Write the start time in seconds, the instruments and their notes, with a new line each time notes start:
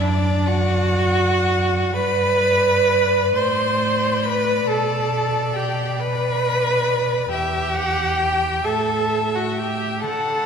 Already playing: cello F#2, violin D5
0.01 viola D4, violin D5
0.46 viola F#4, violin F#5
1.94 cello G2, viola B4, violin D5 B5
3.34 cello A2, viola C5, violin D5 C6
4.23 viola B4, violin B5
4.67 cello B2, viola A4, violin A5
5.54 viola G4, violin G5
5.98 viola B4, violin B5
7.30 cello E2, viola G4, violin E5 G5
7.76 violin F#5
8.19 violin G5
8.65 cello A2, viola A4, violin E5 A5
9.35 viola F#4, violin F#5
9.57 viola G4, violin G5
10.02 cello D3, viola A4, violin F#5 A5